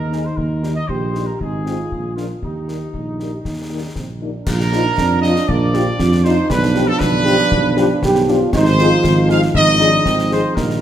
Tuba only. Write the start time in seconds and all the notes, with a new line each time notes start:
Already playing: D#2
0.38 D#2
0.90 A#1
1.41 G#1
1.93 A#1
2.42 D#2
2.94 A#1
3.45 D#2
3.96 A#1
4.47 A#1
4.98 F2
5.49 A#1
5.99 F2
6.50 B1
7.00 B1
7.51 B1
8.02 B1
8.53 G#1
9.04 G#1
9.54 G#1
10.05 G#1
10.57 A#1